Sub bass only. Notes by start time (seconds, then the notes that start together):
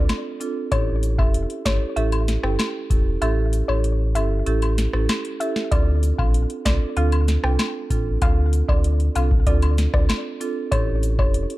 0.72 A1
1.19 F1
1.66 G1
1.97 A1
2.43 G1
2.90 E1
3.22 A1
3.69 A1
4.15 G1
4.47 A1
4.94 A1
5.72 D2
6.19 A#1
6.66 C2
6.97 D2
7.44 C2
7.90 A1
8.22 D2
8.69 D2
9.16 C2
9.47 D2
9.94 D2
10.72 A1
11.19 F1